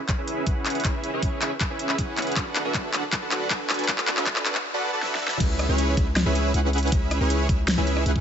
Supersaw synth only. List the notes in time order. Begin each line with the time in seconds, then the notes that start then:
0.18 C#4 E4 G#4 B4 E5
0.47 C#4 E4 G#4 B4 F#5
0.85 C#4 E4 G#4 B4 E5
1.13 C#4 E4 G#4 B4 C#5
1.42 C#4 E4 G#4 B4 E5
1.70 C#4 E4 G#4 B4 E5
1.98 C#4 E4 G#4 B4 F#5
2.36 D4 F#4 A4 B4 F#5
2.65 D4 F#4 A4 B4 E5
2.93 D4 F#4 A4 B4 F#5
3.22 D4 F#4 A4 B4 F#5
3.50 D4 F#4 A4 B4 G#5
3.89 D4 F#4 A4 B4 F#5
4.17 D4 F#4 A4 B4 E5
4.45 D4 F#4 A4 B4 F#5
4.74 D4 F#4 A4 B4 F#5
4.93 D4 F#4 A4 B4 A5
5.02 D4 F#4 A4 B4 E5
5.21 D4 F#4 A4 B4 E5
5.40 C#4 E4 G#4 B4 E5
5.69 C#4 E4 G#4 B4 C#5
5.97 C#4 E4 G#4 B4 E5
6.26 C#4 E4 G#4 B4 E5
6.54 C#4 E4 G#4 B4 F#5
6.92 C#4 E4 G#4 B4 E5
7.20 C#4 E4 G#4 B4 C#5
7.49 C#4 E4 G#4 B4 E5
7.78 C#4 E4 G#4 B4 E5
8.06 C#4 E4 G#4 B4 F#5